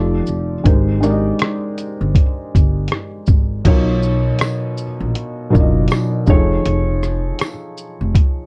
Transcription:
Already playing: F1 F3 D#4 G4 A4 D5
0.26 F1, shaker
0.64 G#1 G#3 D#4 G4 A#4 C5, kick, closed hi-hat
1.00 G#3 D#4 G4 A#4 D5, cross-stick, shaker
1.10 D#5
1.39 cross-stick, closed hi-hat
1.78 closed hi-hat, shaker
2.01 G1
2.15 kick, closed hi-hat
2.55 G1, kick, closed hi-hat, shaker
2.88 closed hi-hat
2.92 cross-stick
3.26 G#1, kick, shaker
3.65 B1 B2 F#3 D#4 F4 A#4 C#5, kick, closed hi-hat, crash
4.03 shaker
4.39 cross-stick, closed hi-hat, tambourine
4.77 shaker
5.00 A#1
5.15 closed hi-hat
5.50 B2 F#3 D#4 F4 A#4 D5
5.55 F#1, kick, shaker
5.60 D#5
5.88 closed hi-hat, tambourine
5.92 cross-stick
6.26 F1 F3 D#4 G#4 A4 C#5, kick, shaker
6.65 F1, closed hi-hat
7.03 cross-stick, shaker
7.39 cross-stick, closed hi-hat, tambourine
7.77 shaker
8.01 F1
8.15 kick, closed hi-hat

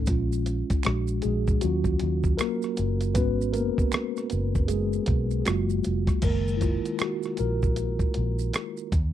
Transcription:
0.06 A#1 G#3 C#4 F4, kick, closed hi-hat, maracas
0.32 maracas
0.46 closed hi-hat, maracas
0.70 kick, closed hi-hat, maracas
0.83 A#1 G#3 D4 F#4, finger snap, cross-stick, closed hi-hat, maracas
1.07 maracas
1.22 A#1 G#3 G#4, closed hi-hat, maracas
1.47 kick, maracas
1.61 D#2 F#3 C#4 F4 F#4, closed hi-hat, maracas
1.84 kick, maracas
1.99 D#2, closed hi-hat
2.24 kick, maracas
2.37 A#3 A#4, finger snap, cross-stick, closed hi-hat, maracas
2.62 cross-stick, maracas
2.77 F#1, closed hi-hat, maracas
3.01 closed hi-hat, maracas
3.14 G#1 G#3 B3 C#4 F#4 B4, kick, closed hi-hat, maracas
3.41 maracas
3.53 A#3 A#4, closed hi-hat, maracas
3.78 kick, maracas
3.92 finger snap, cross-stick, closed hi-hat, maracas
4.17 cross-stick, maracas
4.30 F#1, closed hi-hat, maracas
4.55 kick, maracas
4.68 G#3 G#4, closed hi-hat, maracas
4.93 maracas
5.06 B1, kick, closed hi-hat
5.31 maracas
5.41 G#4
5.45 F#1 F#3 G#3 A#3 F4 F#4, finger snap, cross-stick, closed hi-hat, maracas
5.70 maracas
5.84 F1, closed hi-hat, maracas
6.07 kick, cross-stick, closed hi-hat, maracas
6.22 F#1 D#3 G#3 A#3 A#4, kick, closed hi-hat, crash, maracas
6.48 maracas
6.57 E4, closed hi-hat
6.62 F4, kick, maracas
6.85 closed hi-hat, maracas
6.99 F#4, finger snap, cross-stick, closed hi-hat, maracas
7.23 cross-stick, maracas
7.37 A#1 A#4, closed hi-hat, maracas
7.63 kick, maracas
7.76 closed hi-hat, maracas
7.99 kick, maracas
8.14 A#1, closed hi-hat
8.39 maracas
8.53 finger snap, cross-stick, closed hi-hat, maracas
8.77 maracas
8.92 D#2, kick, closed hi-hat, maracas

